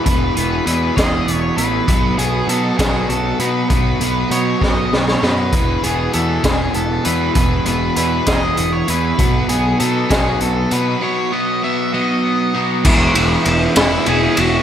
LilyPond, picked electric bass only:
\new Staff \with { instrumentName = "Picked electric bass" } { \clef bass \time 6/8 \key b \mixolydian \tempo 4. = 66 e,,8 e,,8 e,8 e,,8 e,,8 a,,8 | b,,8 b,,8 b,8 b,,8 b,,8 b,8 | b,,8 b,,8 b,8 b,,8 b,,8 fis,8 | e,,8 e,,8 e,8 e,,8 e,,8 e,8 |
e,,8 e,,8 e,8 e,,8 e,,8 e,8 | b,,8 b,,8 b,8 b,,8 b,,8 b,8 | r2. | \key e \major e,,8 e,,8 e,,8 e,,8 e,,8 e,,8 | }